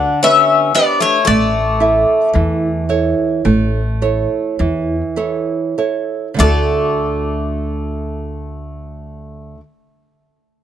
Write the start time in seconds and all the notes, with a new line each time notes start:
Already playing: D3 D4 F#5
0.23 B3 C#4 G4 B4 E5
0.75 B3 D4 G4 B4 D5
1.00 A3 C#5
1.25 A1 A3 D5
1.80 E4 A4 E5
2.33 E2 E3
2.89 E4 A4 C#5
3.45 A1 A3
4.02 E4 A4 C#5
4.59 E2 E3
5.16 E4 A4 C#5
5.78 E4 A4 C#5
6.34 D3 A3
6.39 D2 A3 D4 F#4 A4 D5